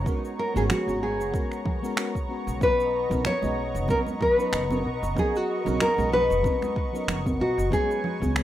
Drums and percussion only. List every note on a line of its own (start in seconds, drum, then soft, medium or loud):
0.06 kick loud
0.06 cabasa medium
0.25 cabasa soft
0.57 cabasa medium
0.70 finger snap medium
0.70 low conga medium
0.70 cabasa medium
0.89 cabasa soft
1.21 cabasa medium
1.34 kick loud
1.34 cabasa medium
1.52 finger snap soft
1.52 cabasa soft
1.65 kick loud
1.65 low conga medium
1.84 cabasa medium
1.97 finger snap loud
1.97 cabasa medium
2.15 kick medium
2.15 cabasa soft
2.48 cabasa medium
2.61 kick loud
2.61 cabasa medium
2.80 cabasa soft
3.11 kick medium
3.11 high conga medium
3.11 cabasa medium
3.25 finger snap medium
3.25 low conga medium
3.25 cabasa medium
3.43 low conga medium
3.43 cabasa soft
3.76 cabasa medium
3.88 kick loud
3.88 high conga medium
3.88 cabasa soft
4.07 low conga medium
4.07 cabasa soft
4.21 kick loud
4.21 low conga medium
4.40 cabasa medium
4.53 finger snap medium
4.53 cabasa medium
4.71 high conga medium
4.71 cabasa soft
5.04 cabasa medium
5.17 kick loud
5.17 low conga medium
5.17 cabasa medium
5.35 cabasa soft
5.66 high conga medium
5.66 cabasa medium
5.80 finger snap medium
5.80 cabasa soft
5.98 low conga medium
5.98 cabasa soft
6.12 low conga medium
6.31 cabasa medium
6.44 kick loud
6.44 high conga medium
6.44 cabasa soft
6.62 finger snap soft
6.62 low conga medium
6.62 cabasa soft
6.76 kick medium
6.95 cabasa medium
7.08 finger snap medium
7.08 low conga medium
7.08 cabasa medium
7.26 kick medium
7.26 high conga medium
7.26 cabasa soft
7.59 cabasa medium
7.72 kick loud
7.72 cabasa soft
7.91 cabasa soft
8.04 low conga medium
8.22 kick medium
8.22 high conga medium
8.22 cabasa medium
8.36 finger snap medium
8.36 cabasa soft